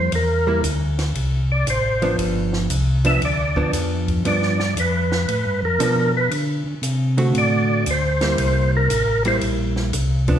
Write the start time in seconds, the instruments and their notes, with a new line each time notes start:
Already playing: tonewheel organ C5
0.12 tonewheel organ E2 A#4, ride
0.47 hollow-body jazz guitar G3 A#3 E4
0.63 tonewheel organ D2, hi-hat pedal, ride
0.99 snare, ride
1.15 tonewheel organ C2, ride
1.52 tonewheel organ D5
1.67 tonewheel organ A1 C5, hi-hat pedal, ride
2.02 hollow-body jazz guitar F3 B3 D4, ride
2.18 tonewheel organ G1, ride
2.53 snare
2.70 tonewheel organ C2, hi-hat pedal, ride
3.05 hollow-body jazz guitar F3 B3 D4, tonewheel organ E5, ride
3.22 tonewheel organ D2 D5, ride
3.56 hollow-body jazz guitar F3 B3 D4, kick
3.73 tonewheel organ F2, hi-hat pedal, ride
4.08 kick, ride
4.25 tonewheel organ G2 D5, hollow-body jazz guitar F3 B3 D4, ride
4.42 snare
4.60 snare
4.76 tonewheel organ F2 B4, hi-hat pedal, ride
5.12 snare
5.28 tonewheel organ A2, ride
5.46 tonewheel organ G2
5.62 tonewheel organ F2 A#4
5.79 tonewheel organ B2, hollow-body jazz guitar F3 B3 D4, hi-hat pedal, ride
6.17 tonewheel organ B4
6.31 tonewheel organ D3, ride
6.66 tonewheel organ D3
6.82 tonewheel organ C3, hi-hat pedal, ride
7.18 hollow-body jazz guitar D3 A3 C4 F#4, ride
7.35 tonewheel organ A2 D5, ride
7.86 tonewheel organ D2, hi-hat pedal, ride
7.91 tonewheel organ C5
8.21 hollow-body jazz guitar G3 A#3 E4, snare, ride
8.38 tonewheel organ C2, ride
8.76 tonewheel organ A#4
8.90 tonewheel organ A1, hi-hat pedal, ride
9.25 hollow-body jazz guitar G3 A#3 E4, tonewheel organ C5, ride
9.41 tonewheel organ A#1, ride
9.76 snare
9.93 tonewheel organ C2, hi-hat pedal, ride
10.28 hollow-body jazz guitar F3 B3 D4, kick, ride